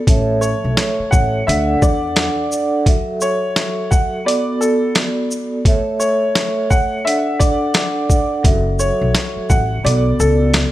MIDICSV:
0, 0, Header, 1, 6, 480
1, 0, Start_track
1, 0, Key_signature, 3, "minor"
1, 0, Tempo, 697674
1, 51, Time_signature, 4, 2, 24, 8
1, 7374, End_track
2, 0, Start_track
2, 0, Title_t, "Upright piano"
2, 0, Program_c, 0, 0
2, 283, Note_on_c, 0, 73, 79
2, 740, Note_off_c, 0, 73, 0
2, 762, Note_on_c, 0, 78, 80
2, 982, Note_off_c, 0, 78, 0
2, 1011, Note_on_c, 0, 76, 90
2, 1227, Note_off_c, 0, 76, 0
2, 1254, Note_on_c, 0, 74, 90
2, 1945, Note_off_c, 0, 74, 0
2, 2213, Note_on_c, 0, 73, 85
2, 2664, Note_off_c, 0, 73, 0
2, 2688, Note_on_c, 0, 78, 75
2, 2905, Note_off_c, 0, 78, 0
2, 2933, Note_on_c, 0, 74, 89
2, 3148, Note_off_c, 0, 74, 0
2, 3170, Note_on_c, 0, 69, 90
2, 3386, Note_off_c, 0, 69, 0
2, 4125, Note_on_c, 0, 73, 79
2, 4581, Note_off_c, 0, 73, 0
2, 4612, Note_on_c, 0, 78, 89
2, 4827, Note_off_c, 0, 78, 0
2, 4848, Note_on_c, 0, 76, 91
2, 5066, Note_off_c, 0, 76, 0
2, 5088, Note_on_c, 0, 74, 94
2, 5782, Note_off_c, 0, 74, 0
2, 6050, Note_on_c, 0, 73, 78
2, 6503, Note_off_c, 0, 73, 0
2, 6533, Note_on_c, 0, 78, 78
2, 6748, Note_off_c, 0, 78, 0
2, 6774, Note_on_c, 0, 74, 89
2, 6989, Note_off_c, 0, 74, 0
2, 7017, Note_on_c, 0, 69, 93
2, 7230, Note_off_c, 0, 69, 0
2, 7374, End_track
3, 0, Start_track
3, 0, Title_t, "Vibraphone"
3, 0, Program_c, 1, 11
3, 50, Note_on_c, 1, 57, 96
3, 55, Note_on_c, 1, 69, 91
3, 61, Note_on_c, 1, 73, 91
3, 66, Note_on_c, 1, 76, 113
3, 951, Note_off_c, 1, 57, 0
3, 954, Note_off_c, 1, 69, 0
3, 957, Note_off_c, 1, 73, 0
3, 959, Note_off_c, 1, 76, 0
3, 1016, Note_on_c, 1, 62, 99
3, 1020, Note_on_c, 1, 69, 86
3, 1026, Note_on_c, 1, 74, 85
3, 1032, Note_on_c, 1, 78, 107
3, 1689, Note_off_c, 1, 62, 0
3, 1691, Note_off_c, 1, 69, 0
3, 1694, Note_off_c, 1, 74, 0
3, 1697, Note_off_c, 1, 78, 0
3, 1716, Note_on_c, 1, 62, 78
3, 1722, Note_on_c, 1, 69, 70
3, 1727, Note_on_c, 1, 74, 71
3, 1732, Note_on_c, 1, 78, 81
3, 1949, Note_off_c, 1, 62, 0
3, 1952, Note_off_c, 1, 69, 0
3, 1954, Note_off_c, 1, 74, 0
3, 1957, Note_off_c, 1, 78, 0
3, 1958, Note_on_c, 1, 54, 95
3, 1964, Note_on_c, 1, 66, 88
3, 1969, Note_on_c, 1, 69, 91
3, 1974, Note_on_c, 1, 76, 104
3, 2865, Note_off_c, 1, 54, 0
3, 2868, Note_off_c, 1, 66, 0
3, 2871, Note_off_c, 1, 69, 0
3, 2873, Note_off_c, 1, 76, 0
3, 2924, Note_on_c, 1, 59, 98
3, 2930, Note_on_c, 1, 66, 90
3, 2935, Note_on_c, 1, 69, 88
3, 2940, Note_on_c, 1, 74, 103
3, 3828, Note_off_c, 1, 59, 0
3, 3831, Note_off_c, 1, 66, 0
3, 3834, Note_off_c, 1, 69, 0
3, 3836, Note_off_c, 1, 74, 0
3, 3888, Note_on_c, 1, 57, 98
3, 3894, Note_on_c, 1, 69, 94
3, 3899, Note_on_c, 1, 73, 94
3, 3904, Note_on_c, 1, 76, 114
3, 4790, Note_off_c, 1, 57, 0
3, 4793, Note_off_c, 1, 69, 0
3, 4796, Note_off_c, 1, 73, 0
3, 4798, Note_off_c, 1, 76, 0
3, 4855, Note_on_c, 1, 62, 99
3, 4861, Note_on_c, 1, 69, 87
3, 4866, Note_on_c, 1, 74, 84
3, 4871, Note_on_c, 1, 78, 105
3, 5529, Note_off_c, 1, 62, 0
3, 5531, Note_off_c, 1, 69, 0
3, 5534, Note_off_c, 1, 74, 0
3, 5537, Note_off_c, 1, 78, 0
3, 5555, Note_on_c, 1, 62, 76
3, 5561, Note_on_c, 1, 69, 67
3, 5566, Note_on_c, 1, 74, 69
3, 5571, Note_on_c, 1, 78, 84
3, 5788, Note_off_c, 1, 62, 0
3, 5791, Note_off_c, 1, 69, 0
3, 5794, Note_off_c, 1, 74, 0
3, 5796, Note_off_c, 1, 78, 0
3, 5800, Note_on_c, 1, 54, 96
3, 5805, Note_on_c, 1, 66, 86
3, 5810, Note_on_c, 1, 69, 93
3, 5816, Note_on_c, 1, 76, 101
3, 6706, Note_off_c, 1, 54, 0
3, 6709, Note_off_c, 1, 66, 0
3, 6711, Note_off_c, 1, 69, 0
3, 6714, Note_off_c, 1, 76, 0
3, 6766, Note_on_c, 1, 59, 101
3, 6771, Note_on_c, 1, 66, 84
3, 6776, Note_on_c, 1, 69, 89
3, 6781, Note_on_c, 1, 74, 100
3, 7374, Note_off_c, 1, 59, 0
3, 7374, Note_off_c, 1, 66, 0
3, 7374, Note_off_c, 1, 69, 0
3, 7374, Note_off_c, 1, 74, 0
3, 7374, End_track
4, 0, Start_track
4, 0, Title_t, "Upright bass"
4, 0, Program_c, 2, 32
4, 51, Note_on_c, 2, 33, 100
4, 359, Note_off_c, 2, 33, 0
4, 443, Note_on_c, 2, 35, 86
4, 515, Note_off_c, 2, 35, 0
4, 777, Note_on_c, 2, 33, 91
4, 965, Note_off_c, 2, 33, 0
4, 1018, Note_on_c, 2, 38, 108
4, 1206, Note_off_c, 2, 38, 0
4, 1255, Note_on_c, 2, 40, 101
4, 1561, Note_off_c, 2, 40, 0
4, 5812, Note_on_c, 2, 30, 97
4, 6119, Note_off_c, 2, 30, 0
4, 6202, Note_on_c, 2, 35, 93
4, 6274, Note_off_c, 2, 35, 0
4, 6537, Note_on_c, 2, 33, 89
4, 6725, Note_off_c, 2, 33, 0
4, 6773, Note_on_c, 2, 35, 104
4, 6963, Note_off_c, 2, 35, 0
4, 7015, Note_on_c, 2, 37, 102
4, 7321, Note_off_c, 2, 37, 0
4, 7374, End_track
5, 0, Start_track
5, 0, Title_t, "Muted upright bass strokes"
5, 684, Note_on_c, 9, 29, 49
5, 753, Note_off_c, 9, 29, 0
5, 6441, Note_on_c, 9, 29, 48
5, 6510, Note_off_c, 9, 29, 0
5, 7374, End_track
6, 0, Start_track
6, 0, Title_t, "Drums"
6, 50, Note_on_c, 9, 36, 119
6, 52, Note_on_c, 9, 42, 89
6, 119, Note_off_c, 9, 36, 0
6, 121, Note_off_c, 9, 42, 0
6, 289, Note_on_c, 9, 82, 62
6, 358, Note_off_c, 9, 82, 0
6, 531, Note_on_c, 9, 38, 123
6, 537, Note_on_c, 9, 42, 73
6, 600, Note_off_c, 9, 38, 0
6, 606, Note_off_c, 9, 42, 0
6, 774, Note_on_c, 9, 82, 52
6, 775, Note_on_c, 9, 36, 90
6, 843, Note_off_c, 9, 82, 0
6, 844, Note_off_c, 9, 36, 0
6, 1027, Note_on_c, 9, 42, 92
6, 1095, Note_off_c, 9, 42, 0
6, 1254, Note_on_c, 9, 36, 95
6, 1255, Note_on_c, 9, 82, 56
6, 1322, Note_off_c, 9, 36, 0
6, 1324, Note_off_c, 9, 82, 0
6, 1486, Note_on_c, 9, 42, 74
6, 1490, Note_on_c, 9, 38, 110
6, 1555, Note_off_c, 9, 42, 0
6, 1558, Note_off_c, 9, 38, 0
6, 1733, Note_on_c, 9, 82, 61
6, 1802, Note_off_c, 9, 82, 0
6, 1969, Note_on_c, 9, 36, 122
6, 1972, Note_on_c, 9, 42, 88
6, 2038, Note_off_c, 9, 36, 0
6, 2040, Note_off_c, 9, 42, 0
6, 2208, Note_on_c, 9, 82, 63
6, 2277, Note_off_c, 9, 82, 0
6, 2451, Note_on_c, 9, 38, 121
6, 2456, Note_on_c, 9, 42, 71
6, 2520, Note_off_c, 9, 38, 0
6, 2525, Note_off_c, 9, 42, 0
6, 2694, Note_on_c, 9, 36, 92
6, 2695, Note_on_c, 9, 82, 51
6, 2763, Note_off_c, 9, 36, 0
6, 2764, Note_off_c, 9, 82, 0
6, 2946, Note_on_c, 9, 42, 95
6, 3015, Note_off_c, 9, 42, 0
6, 3176, Note_on_c, 9, 82, 58
6, 3245, Note_off_c, 9, 82, 0
6, 3406, Note_on_c, 9, 42, 75
6, 3410, Note_on_c, 9, 38, 109
6, 3475, Note_off_c, 9, 42, 0
6, 3479, Note_off_c, 9, 38, 0
6, 3655, Note_on_c, 9, 82, 59
6, 3723, Note_off_c, 9, 82, 0
6, 3889, Note_on_c, 9, 36, 124
6, 3892, Note_on_c, 9, 42, 90
6, 3958, Note_off_c, 9, 36, 0
6, 3961, Note_off_c, 9, 42, 0
6, 4130, Note_on_c, 9, 82, 63
6, 4198, Note_off_c, 9, 82, 0
6, 4372, Note_on_c, 9, 38, 124
6, 4377, Note_on_c, 9, 42, 71
6, 4441, Note_off_c, 9, 38, 0
6, 4446, Note_off_c, 9, 42, 0
6, 4614, Note_on_c, 9, 36, 91
6, 4615, Note_on_c, 9, 82, 50
6, 4683, Note_off_c, 9, 36, 0
6, 4684, Note_off_c, 9, 82, 0
6, 4866, Note_on_c, 9, 42, 93
6, 4935, Note_off_c, 9, 42, 0
6, 5093, Note_on_c, 9, 36, 96
6, 5096, Note_on_c, 9, 42, 59
6, 5096, Note_on_c, 9, 82, 58
6, 5162, Note_off_c, 9, 36, 0
6, 5164, Note_off_c, 9, 42, 0
6, 5164, Note_off_c, 9, 82, 0
6, 5326, Note_on_c, 9, 42, 77
6, 5330, Note_on_c, 9, 38, 107
6, 5395, Note_off_c, 9, 42, 0
6, 5398, Note_off_c, 9, 38, 0
6, 5570, Note_on_c, 9, 36, 91
6, 5574, Note_on_c, 9, 82, 59
6, 5639, Note_off_c, 9, 36, 0
6, 5643, Note_off_c, 9, 82, 0
6, 5810, Note_on_c, 9, 36, 117
6, 5812, Note_on_c, 9, 42, 89
6, 5878, Note_off_c, 9, 36, 0
6, 5880, Note_off_c, 9, 42, 0
6, 6050, Note_on_c, 9, 82, 62
6, 6118, Note_off_c, 9, 82, 0
6, 6292, Note_on_c, 9, 38, 122
6, 6298, Note_on_c, 9, 42, 72
6, 6361, Note_off_c, 9, 38, 0
6, 6367, Note_off_c, 9, 42, 0
6, 6535, Note_on_c, 9, 36, 89
6, 6535, Note_on_c, 9, 82, 53
6, 6604, Note_off_c, 9, 36, 0
6, 6604, Note_off_c, 9, 82, 0
6, 6787, Note_on_c, 9, 42, 92
6, 6856, Note_off_c, 9, 42, 0
6, 7017, Note_on_c, 9, 82, 57
6, 7086, Note_off_c, 9, 82, 0
6, 7248, Note_on_c, 9, 42, 74
6, 7252, Note_on_c, 9, 38, 113
6, 7317, Note_off_c, 9, 42, 0
6, 7321, Note_off_c, 9, 38, 0
6, 7374, End_track
0, 0, End_of_file